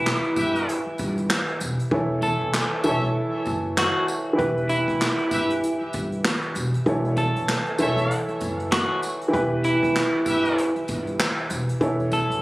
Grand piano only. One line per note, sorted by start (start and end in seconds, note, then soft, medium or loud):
0.00 1.85 E3 medium
0.00 1.86 E4 medium
0.00 1.86 G4 medium
0.00 1.87 B4 loud
1.91 2.82 E3 medium
1.91 2.84 E4 medium
1.91 2.85 A4 medium
1.91 2.85 C#5 medium
2.84 4.32 E3 medium
2.84 4.34 E4 medium
2.84 4.37 A4 medium
2.89 4.38 C#5 medium
4.33 6.79 E3 medium
4.33 6.80 E4 medium
4.33 6.81 G4 medium
4.38 6.82 B4 medium
6.86 7.77 E3 medium
6.86 7.79 E4 medium
6.86 7.80 A4 medium
6.86 7.80 C#5 medium
7.79 9.27 E3 medium
7.79 9.28 E4 medium
7.79 9.32 A4 medium
7.84 9.33 C#5 medium
9.28 11.74 E3 medium
9.28 11.75 E4 medium
9.28 11.76 G4 medium
9.33 11.77 B4 loud
11.81 12.42 E3 medium
11.81 12.42 E4 medium
11.81 12.42 A4 medium
11.81 12.42 C#5 medium